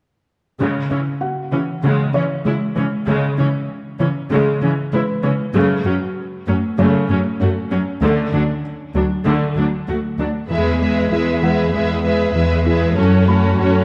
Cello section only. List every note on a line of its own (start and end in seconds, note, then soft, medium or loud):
0.60 0.68 C#3 soft
0.91 0.99 C#3 soft
1.53 1.61 C#3 soft
1.83 1.91 C#3 soft
2.14 2.22 C#3 soft
2.46 2.54 C#3 soft
2.77 2.85 C#3 soft
3.08 3.16 C#3 soft
3.39 3.47 C#3 soft
4.00 4.08 C#3 soft
4.31 4.39 C#3 soft
4.62 4.70 C#3 soft
4.93 5.01 C#3 soft
5.23 5.31 C#3 soft
5.54 5.62 F#2 medium
5.85 5.93 F#2 soft
6.47 6.55 F#2 soft
6.78 6.86 F#2 medium
7.09 7.17 F#2 soft
7.40 7.48 F#2 soft
7.71 7.79 F#2 soft
8.02 8.10 D2 medium
8.33 8.41 D2 soft
8.95 9.03 D2 soft
9.26 9.34 D2 medium
9.56 9.64 D2 soft
9.88 9.96 D2 soft
10.19 10.27 D2 soft
10.50 11.04 E2 soft
11.11 11.66 E2 soft
11.74 12.28 E2 soft
12.35 12.90 E2 soft
12.97 13.51 F#2 soft
13.59 13.84 F#2 soft